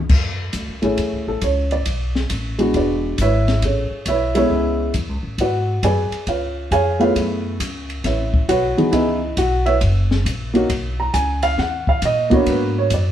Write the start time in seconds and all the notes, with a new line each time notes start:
0.09 F#2, kick, crash
0.53 D2, kick, hi-hat pedal, ride
0.68 C#2
0.82 A1 A3 C#4 E4 G#4, ride
0.98 E2, kick, ride
1.12 C#2
1.27 A1 A4
1.41 C#2 C#5, kick, hi-hat pedal, ride
1.71 D5, ride
1.85 B1, kick, ride
2.15 snare
2.30 A1, kick, hi-hat pedal, ride
2.59 G#3 B3 D4 F#4, ride
2.74 E1 D4 G#4 B4 D5, kick, ride
3.18 G#1 E4 B4 C#5 E5, kick, hi-hat pedal, ride
3.48 snare, ride
3.62 A1 C#4 G#4 A4 C#5, kick, ride
3.91 muted upright bass stroke
4.06 B1 E4 B4 C#5 E5, kick, hi-hat pedal, ride
4.35 G#3 B3 C#4 E4 G#4 A4 C#5, ride
4.50 C#2, kick
4.94 E2, kick, hi-hat pedal, ride
5.09 C#2
5.23 A1
5.38 G#2 F#4 B4 D5 F#5, kick, ride
5.83 F#2 G#4 B4 D5 G#5, kick, hi-hat pedal, ride
6.11 muted upright bass stroke, ride
6.27 C#2 F4 B4 C#5 F5, kick, ride
6.71 F2 G#4 C#5 F5 G#5, kick, hi-hat pedal, ride
6.99 A3 B3 E4 F4 G#4 B4 C#5 F5, ride
7.15 F#2, kick, ride
7.60 C#2, kick, hi-hat pedal, ride
7.90 ride
8.04 A1 E4 B4 C#5 E5, kick, snare, ride
8.34 kick
8.49 B1 F#4 B4 C#5 F#5, kick, hi-hat pedal, ride
8.77 E3 B3 D#4 G#4, ride
8.91 C#2 B3 D#4 E4 G#4 B4 D#5, kick, ride
9.37 B1 F#4 F#5, kick, hi-hat pedal, ride
9.66 E4 B4 C#5 E5, ride
9.81 F#1, kick, ride
10.11 snare
10.25 A#1, kick, hi-hat pedal, ride
10.54 A#3 C#4 D#4 F#4, ride
10.70 B1, kick, ride
11.00 A#5
11.14 C#2 G#5, kick, hi-hat pedal, ride
11.43 F5, ride
11.58 D#2 F#5, kick, snare
11.87 F5, kick
12.02 A#2 D#5, kick, hi-hat pedal, ride
12.30 A#3 B3 D4 F#4 C#5, kick, ride
12.46 G#2 B4, kick, ride
12.79 C#5
12.90 F#2 D5, kick, hi-hat pedal, ride